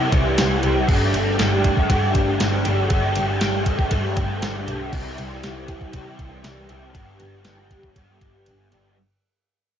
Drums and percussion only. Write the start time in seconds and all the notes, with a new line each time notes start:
0.12 kick, ride
0.38 snare, ride
0.63 ride
0.89 kick, crash
1.14 ride
1.39 snare, ride
1.64 kick, ride
1.77 kick
1.90 kick, ride
2.15 kick, ride
2.40 snare, ride
2.65 ride
2.90 kick, ride
3.15 ride
3.41 snare, ride
3.66 kick, ride
3.79 kick
3.91 kick, ride
4.17 kick, ride
4.42 snare, ride
4.68 ride
4.93 kick, crash
5.18 ride
5.43 snare, ride
5.68 kick, ride
5.81 kick
5.93 kick, ride
6.19 kick, ride
6.44 snare, ride
6.69 ride
6.95 kick, ride
7.20 ride
7.45 snare, ride
7.71 kick, ride
7.83 kick
7.96 kick, ride
8.21 kick, ride
8.46 ride
8.72 ride